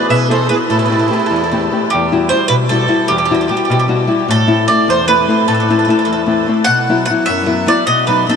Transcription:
0.00 0.23 B3 soft
0.00 0.23 E4 soft
0.00 0.23 G#4 soft
0.08 0.48 B2 medium
0.08 0.27 B4 medium
0.08 0.28 E5 medium
0.29 0.49 B3 soft
0.29 0.49 E4 soft
0.29 0.50 G#4 soft
0.29 0.47 A4 medium
0.29 0.49 C5 medium
0.49 0.66 B3 soft
0.49 0.66 E4 soft
0.49 0.58 G#4 medium
0.49 0.66 G#4 soft
0.49 0.54 B4 medium
0.69 1.08 A2 medium
0.69 1.65 E4 medium
0.69 0.76 A4 medium
0.79 0.84 A4 soft
0.86 1.08 A3 soft
0.86 1.08 C4 soft
0.86 0.91 A4 soft
0.90 1.08 G4 soft
0.90 0.98 A4 soft
0.99 1.06 A4 soft
1.08 1.41 A3 soft
1.08 1.41 C4 soft
1.08 1.41 G4 soft
1.08 1.12 A4 soft
1.13 1.18 A4 soft
1.20 1.25 A4 soft
1.26 1.34 A4 soft
1.31 1.69 E2 medium
1.36 1.42 A4 soft
1.44 1.50 A4 soft
1.51 1.70 A3 soft
1.51 1.71 C4 soft
1.51 1.71 G4 soft
1.51 1.59 A4 soft
1.71 1.87 A3 soft
1.71 1.87 C4 soft
1.71 1.88 G4 soft
1.90 2.28 G4 medium
1.94 2.31 E2 medium
2.12 2.31 G3 soft
2.12 2.31 E4 soft
2.12 2.31 F#4 medium
2.29 2.63 G3 soft
2.29 2.63 E4 soft
2.29 2.63 F#4 soft
2.29 2.48 C5 medium
2.48 2.88 B2 medium
2.48 2.54 B4 loud
2.69 2.88 G3 soft
2.69 2.87 E4 soft
2.69 2.88 F#4 soft
2.69 3.10 A4 medium
2.89 3.21 G3 soft
2.89 3.21 E4 soft
2.89 3.21 F#4 soft
3.08 3.48 E2 medium
3.08 3.16 G4 medium
3.18 3.24 G4 soft
3.25 3.32 G4 medium
3.31 3.49 G3 soft
3.31 3.49 E4 soft
3.31 3.50 F#4 medium
3.31 3.40 G4 soft
3.41 3.47 G4 soft
3.49 3.81 G3 soft
3.49 3.81 E4 soft
3.49 3.82 F#4 soft
3.49 3.55 G4 soft
3.57 3.62 G4 soft
3.65 3.70 G4 soft
3.70 4.07 B2 medium
3.70 3.77 G4 medium
3.79 3.85 G4 medium
3.88 4.06 G3 soft
3.88 4.07 E4 soft
3.88 4.07 F#4 medium
4.07 4.23 G3 soft
4.07 4.24 E4 soft
4.07 4.24 F#4 medium
4.28 4.66 A2 medium
4.28 4.66 A4 loud
4.47 4.67 A3 soft
4.47 4.68 C4 soft
4.47 4.67 E4 medium
4.68 5.00 A3 soft
4.68 5.00 C4 soft
4.68 5.00 E4 soft
4.68 4.88 D5 medium
4.88 5.26 E2 medium
4.88 5.07 C5 medium
5.07 5.27 A3 soft
5.07 5.27 C4 soft
5.07 5.28 E4 medium
5.07 5.47 B4 medium
5.28 5.59 A3 soft
5.28 5.59 C4 soft
5.28 5.60 E4 soft
5.48 5.86 A2 medium
5.48 5.53 A4 medium
5.54 5.59 A4 soft
5.60 5.68 A4 medium
5.69 5.86 A3 soft
5.69 5.87 C4 soft
5.69 5.87 E4 medium
5.69 5.77 A4 soft
5.79 5.84 A4 soft
5.85 6.19 A3 soft
5.85 6.20 C4 soft
5.85 6.20 E4 soft
5.85 5.89 A4 soft
5.90 5.98 A4 soft
5.99 6.04 A4 soft
6.05 6.46 E2 medium
6.05 6.11 A4 medium
6.13 6.20 A4 medium
6.26 6.47 A3 soft
6.26 6.47 C4 soft
6.26 6.48 E4 soft
6.48 6.64 A3 soft
6.48 6.64 C4 soft
6.48 6.64 E4 soft
6.64 7.06 B2 medium
6.64 7.03 F#5 loud
6.89 7.09 F#3 soft
6.89 7.09 B3 soft
6.89 7.10 E4 medium
7.06 7.11 F#5 medium
7.10 7.41 F#3 soft
7.10 7.41 B3 soft
7.10 7.42 E4 soft
7.26 7.67 F#2 medium
7.26 7.64 E5 medium
7.46 7.66 F#3 soft
7.46 7.66 B3 soft
7.46 7.66 E4 soft
7.67 7.83 F#3 soft
7.67 7.83 B3 soft
7.67 7.83 E4 medium
7.67 7.86 D5 medium
7.87 8.26 B2 medium
7.87 8.06 D#5 medium
8.07 8.27 F#3 soft
8.07 8.27 B3 soft
8.07 8.29 D#4 soft
8.07 8.25 B4 medium
8.29 8.36 F#3 soft
8.29 8.36 B3 soft
8.29 8.36 D#4 soft
8.29 8.36 A4 medium

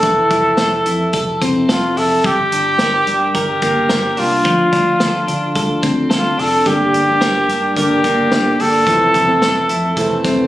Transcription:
0.00 0.26 F1 medium
0.00 2.24 E3 medium
0.00 1.42 A4 medium
0.00 kick loud
0.00 closed hi-hat medium
0.30 0.53 F1 medium
0.30 0.85 E4 soft
0.30 kick medium
0.30 closed hi-hat medium
0.57 0.81 F1 medium
0.57 1.12 A4 medium
0.57 snare medium
0.57 closed hi-hat medium
0.86 1.09 F2 medium
0.86 1.96 E4 medium
0.86 closed hi-hat medium
1.13 1.36 F1 medium
1.13 1.68 A4 medium
1.13 kick medium
1.13 closed hi-hat medium
1.41 1.64 F1 medium
1.41 2.30 C4 medium
1.41 kick medium
1.41 closed hi-hat medium
1.69 1.92 F1 medium
1.69 2.00 F4 medium
1.69 2.30 A4 medium
1.69 snare loud
1.69 closed hi-hat medium
1.97 2.19 F1 medium
1.97 2.30 E4 medium
1.97 2.27 A4 loud
1.97 open hi-hat medium
2.24 2.47 G1 medium
2.24 4.44 G3 medium
2.24 3.35 G4 loud
2.24 kick loud
2.24 closed hi-hat medium
2.52 2.75 G1 medium
2.52 3.07 D4 medium
2.52 closed hi-hat medium
2.79 3.02 G1 loud
2.79 3.34 A#4 medium
2.79 snare medium
2.79 closed hi-hat medium
3.07 3.30 G2 medium
3.07 4.17 D4 soft
3.07 closed hi-hat medium
3.34 3.57 G1 loud
3.34 4.21 G4 medium
3.34 3.88 A#4 medium
3.34 kick medium
3.34 closed hi-hat medium
3.62 3.85 G1 medium
3.62 4.51 A#3 medium
3.62 kick medium
3.62 closed hi-hat medium
3.89 4.13 G1 medium
3.89 4.50 A#4 medium
3.89 snare loud
3.89 closed hi-hat medium
4.17 4.41 C2 medium
4.17 4.72 D4 medium
4.17 5.84 F4 medium
4.17 open hi-hat medium
4.44 4.68 D2 medium
4.44 6.65 F3 medium
4.44 kick loud
4.44 closed hi-hat medium
4.72 4.95 D2 medium
4.72 5.27 D4 medium
4.72 kick medium
4.72 closed hi-hat medium
5.00 5.24 D2 medium
5.00 5.54 A4 medium
5.00 snare medium
5.00 closed hi-hat medium
5.28 5.57 D3 medium
5.28 6.37 D4 medium
5.28 closed hi-hat medium
5.55 5.78 D2 medium
5.55 6.09 A4 medium
5.55 kick medium
5.55 closed hi-hat medium
5.82 6.06 D2 medium
5.82 6.71 C4 medium
5.82 kick medium
5.82 closed hi-hat medium
6.10 6.33 D2 medium
6.10 6.41 F4 medium
6.10 6.71 A4 medium
6.10 snare medium
6.10 closed hi-hat medium
6.38 6.61 F1 medium
6.38 6.93 D4 soft
6.38 6.69 A4 medium
6.38 open hi-hat medium
6.66 6.89 G1 medium
6.66 7.07 G2 medium
6.66 7.08 D3 medium
6.66 8.86 G3 medium
6.66 7.08 G3 medium
6.66 7.07 A#3 medium
6.66 7.06 D4 medium
6.66 7.77 G4 loud
6.66 kick loud
6.66 closed hi-hat medium
6.93 7.16 G1 medium
6.93 7.48 D4 medium
6.93 closed hi-hat medium
7.07 7.75 G3 soft
7.07 7.76 A#3 soft
7.07 7.76 D4 soft
7.21 7.44 G1 medium
7.21 7.75 A#4 medium
7.21 snare medium
7.21 closed hi-hat medium
7.48 7.71 G2 medium
7.48 8.58 D4 medium
7.48 closed hi-hat medium
7.75 7.99 G1 medium
7.75 8.02 D3 medium
7.75 8.03 G3 medium
7.75 8.04 A#3 medium
7.75 8.04 D4 medium
7.75 8.63 G4 medium
7.75 8.32 A#4 medium
7.75 kick medium
7.75 closed hi-hat medium
8.03 8.27 G1 medium
8.03 8.29 D3 soft
8.03 8.30 G3 soft
8.03 8.92 A#3 medium
8.03 8.31 A#3 medium
8.03 8.31 D4 medium
8.03 kick medium
8.03 closed hi-hat medium
8.30 8.54 G1 medium
8.30 8.57 D3 medium
8.30 8.58 G3 medium
8.30 8.58 A#3 medium
8.30 8.60 D4 medium
8.30 snare loud
8.30 closed hi-hat medium
8.58 8.87 G1 medium
8.58 8.86 D3 soft
8.58 8.87 G3 medium
8.58 8.87 A#3 medium
8.58 8.92 D4 medium
8.58 8.87 D4 medium
8.58 10.26 A4 medium
8.58 open hi-hat medium
8.86 9.09 F1 medium
8.86 9.28 F2 medium
8.86 9.28 C3 medium
8.86 10.47 E3 medium
8.86 9.28 E3 medium
8.86 9.28 A3 medium
8.86 9.26 C4 medium
8.86 kick loud
8.86 closed hi-hat medium
9.14 9.37 F1 medium
9.14 9.68 E4 medium
9.14 kick medium
9.14 closed hi-hat medium
9.27 9.96 E3 soft
9.27 9.97 A3 soft
9.27 9.97 C4 medium
9.41 9.64 F1 loud
9.41 9.96 A4 medium
9.41 snare loud
9.41 closed hi-hat medium
9.69 9.92 F2 medium
9.69 10.47 E4 medium
9.69 closed hi-hat medium
9.97 10.20 F1 medium
9.97 10.23 C3 medium
9.97 10.24 E3 medium
9.97 10.25 A3 medium
9.97 10.25 C4 medium
9.97 10.47 A4 medium
9.97 kick medium
9.97 closed hi-hat medium
10.24 10.47 F1 medium
10.24 10.47 C3 medium
10.24 10.47 E3 medium
10.24 10.47 A3 medium
10.24 10.47 C4 medium
10.24 kick medium
10.24 closed hi-hat medium

